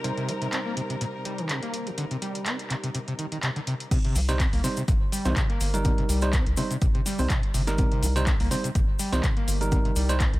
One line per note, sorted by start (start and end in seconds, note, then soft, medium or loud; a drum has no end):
0.00 3.87 C3 medium
0.00 3.87 G3 medium
0.00 3.87 D#4 medium
0.00 3.87 A#4 medium
0.04 0.12 C3 medium
0.04 3.89 G3 medium
0.04 3.89 D#4 medium
0.04 3.89 C5 medium
0.04 closed hi-hat medium
0.17 0.30 C3 medium
0.17 closed hi-hat soft
0.28 0.33 G3 medium
0.28 closed hi-hat medium
0.42 0.48 C3 medium
0.42 closed hi-hat medium
0.53 0.60 C4 medium
0.53 clap loud
0.53 closed hi-hat medium
0.66 0.75 A#3 medium
0.77 0.81 C3 loud
0.77 closed hi-hat medium
0.90 0.96 C3 medium
0.90 closed hi-hat medium
1.01 1.05 A#2 medium
1.01 closed hi-hat medium
1.25 1.40 G3 medium
1.25 closed hi-hat medium
1.38 1.51 D#3 loud
1.38 closed hi-hat medium
1.49 1.60 C3 medium
1.49 clap loud
1.49 closed hi-hat medium
1.63 1.88 A#3 medium
1.63 closed hi-hat soft
1.74 closed hi-hat medium
1.87 1.90 D3 medium
1.87 closed hi-hat soft
1.98 2.05 D3 medium
1.98 closed hi-hat medium
2.11 2.17 C3 medium
2.11 closed hi-hat soft
2.22 2.48 G3 medium
2.22 closed hi-hat medium
2.35 closed hi-hat medium
2.46 2.57 C4 medium
2.46 clap loud
2.46 closed hi-hat medium
2.59 closed hi-hat soft
2.70 2.75 C3 loud
2.70 clap medium
2.70 closed hi-hat medium
2.84 2.90 C3 medium
2.84 closed hi-hat medium
2.95 2.99 C3 medium
2.95 closed hi-hat medium
3.08 3.14 C3 medium
3.08 closed hi-hat soft
3.19 3.26 D#3 medium
3.19 closed hi-hat medium
3.32 3.38 D#3 medium
3.32 closed hi-hat medium
3.43 3.50 C3 loud
3.43 clap loud
3.43 closed hi-hat medium
3.56 3.60 D3 loud
3.56 closed hi-hat soft
3.67 3.74 C3 loud
3.67 closed hi-hat medium
3.80 closed hi-hat medium
3.91 3.99 C3 medium
3.91 kick loud
3.91 closed hi-hat medium
3.91 crash loud
3.91 high conga medium
3.91 cabasa soft
4.05 4.17 C3 medium
4.05 closed hi-hat soft
4.15 4.48 C2 loud
4.15 4.20 G3 medium
4.15 open hi-hat loud
4.15 cabasa medium
4.29 4.35 C3 medium
4.29 4.38 G3 loud
4.29 4.38 D#4 medium
4.29 4.38 C5 loud
4.29 snare soft
4.29 closed hi-hat medium
4.29 cabasa medium
4.40 4.47 C4 medium
4.40 kick loud
4.40 clap loud
4.40 closed hi-hat medium
4.40 cabasa soft
4.53 4.61 C2 medium
4.53 4.62 A#3 medium
4.53 open hi-hat medium
4.64 4.68 C3 loud
4.64 4.80 G3 medium
4.64 4.80 D#4 medium
4.64 4.80 C5 medium
4.64 snare soft
4.64 open hi-hat loud
4.64 high conga soft
4.64 cabasa medium
4.77 4.83 C3 medium
4.77 closed hi-hat medium
4.77 cabasa medium
4.88 4.98 G1 medium
4.88 4.93 A#2 loud
4.88 kick loud
4.88 closed hi-hat medium
4.88 cabasa soft
5.12 5.27 G3 medium
5.12 open hi-hat loud
5.12 cabasa medium
5.25 5.34 C2 loud
5.25 5.38 D#3 loud
5.25 5.34 G3 medium
5.25 5.34 D#4 medium
5.25 5.34 C5 loud
5.25 snare medium
5.25 closed hi-hat medium
5.25 high conga medium
5.25 cabasa soft
5.36 5.47 C3 medium
5.36 kick loud
5.36 clap loud
5.36 closed hi-hat medium
5.36 cabasa soft
5.50 5.75 A#3 medium
5.50 closed hi-hat soft
5.61 5.93 G1 loud
5.61 open hi-hat loud
5.61 cabasa medium
5.74 5.78 D3 medium
5.74 6.19 G3 medium
5.74 6.19 D#4 medium
5.74 6.19 A#4 loud
5.74 closed hi-hat medium
5.74 cabasa medium
5.85 5.92 D3 loud
5.85 kick loud
5.85 closed hi-hat medium
5.85 high conga medium
5.85 cabasa soft
5.98 6.04 C3 medium
5.98 closed hi-hat soft
6.09 6.41 C2 loud
6.09 6.35 G3 medium
6.09 open hi-hat loud
6.09 cabasa loud
6.21 6.31 G3 loud
6.21 6.31 D#4 medium
6.21 6.31 C5 loud
6.21 snare soft
6.21 closed hi-hat medium
6.21 cabasa medium
6.33 6.44 C4 medium
6.33 kick loud
6.33 clap loud
6.33 closed hi-hat medium
6.33 cabasa soft
6.46 6.55 C2 medium
6.46 closed hi-hat soft
6.57 6.62 C3 loud
6.57 6.74 G3 medium
6.57 6.74 D#4 medium
6.57 6.74 C5 medium
6.57 open hi-hat loud
6.57 high conga soft
6.57 cabasa loud
6.71 6.77 C3 medium
6.71 closed hi-hat medium
6.71 cabasa medium
6.82 6.92 G1 medium
6.82 6.86 C3 medium
6.82 kick loud
6.82 closed hi-hat medium
6.82 cabasa soft
6.95 7.01 C3 medium
6.95 closed hi-hat soft
7.06 7.21 G3 medium
7.06 snare soft
7.06 open hi-hat loud
7.06 cabasa loud
7.19 7.27 C2 loud
7.19 7.23 C3 medium
7.19 7.28 G3 medium
7.19 7.28 D#4 medium
7.19 7.28 C5 loud
7.19 open hi-hat medium
7.19 high conga medium
7.19 cabasa soft
7.30 7.41 C3 medium
7.30 kick loud
7.30 clap loud
7.30 closed hi-hat medium
7.30 cabasa soft
7.43 closed hi-hat soft
7.54 7.86 G1 loud
7.54 7.62 C3 loud
7.54 open hi-hat loud
7.54 cabasa loud
7.67 8.13 G3 medium
7.67 8.13 D#4 medium
7.67 8.13 A#4 loud
7.67 snare medium
7.67 closed hi-hat medium
7.67 cabasa soft
7.78 7.86 C3 medium
7.78 kick loud
7.78 closed hi-hat medium
7.78 high conga medium
7.78 cabasa soft
7.92 8.04 C3 medium
7.92 closed hi-hat soft
8.03 8.35 C2 loud
8.03 8.07 G3 medium
8.03 open hi-hat loud
8.03 cabasa loud
8.16 8.22 C3 medium
8.16 8.25 G3 loud
8.16 8.25 D#4 medium
8.16 8.25 C5 loud
8.16 snare soft
8.16 closed hi-hat medium
8.16 cabasa medium
8.27 8.34 C4 medium
8.27 kick loud
8.27 clap loud
8.27 closed hi-hat medium
8.27 cabasa soft
8.40 8.48 C2 medium
8.40 8.49 A#3 medium
8.40 open hi-hat medium
8.51 8.55 C3 loud
8.51 8.67 G3 medium
8.51 8.67 D#4 medium
8.51 8.67 C5 medium
8.51 snare soft
8.51 open hi-hat loud
8.51 high conga soft
8.51 cabasa medium
8.64 8.70 C3 medium
8.64 closed hi-hat medium
8.64 cabasa medium
8.75 8.85 G1 medium
8.75 8.80 A#2 loud
8.75 kick loud
8.75 closed hi-hat medium
8.75 cabasa soft
8.99 9.14 G3 medium
8.99 open hi-hat loud
8.99 cabasa loud
9.13 9.21 C2 medium
9.13 9.25 D#3 loud
9.13 9.21 G3 medium
9.13 9.21 D#4 medium
9.13 9.21 C5 loud
9.13 snare medium
9.13 closed hi-hat medium
9.13 high conga medium
9.13 cabasa medium
9.23 9.35 C3 medium
9.23 kick loud
9.23 clap loud
9.23 closed hi-hat medium
9.23 cabasa soft
9.37 9.62 A#3 medium
9.37 closed hi-hat soft
9.48 9.80 G1 loud
9.48 open hi-hat loud
9.48 cabasa medium
9.61 9.65 D3 medium
9.61 10.06 G3 medium
9.61 10.06 D#4 medium
9.61 10.06 A#4 loud
9.61 closed hi-hat soft
9.61 cabasa medium
9.72 9.79 D3 loud
9.72 kick loud
9.72 closed hi-hat medium
9.72 high conga medium
9.72 cabasa soft
9.85 9.91 C3 medium
9.85 closed hi-hat soft
9.96 10.28 C2 loud
9.96 10.22 G3 medium
9.96 open hi-hat loud
9.96 cabasa loud
10.09 10.18 G3 loud
10.09 10.18 D#4 medium
10.09 10.18 C5 loud
10.09 snare soft
10.09 closed hi-hat medium
10.09 cabasa medium
10.20 10.31 C4 medium
10.20 kick loud
10.20 clap loud
10.20 closed hi-hat medium
10.20 cabasa soft
10.34 10.39 C2 medium
10.34 closed hi-hat soft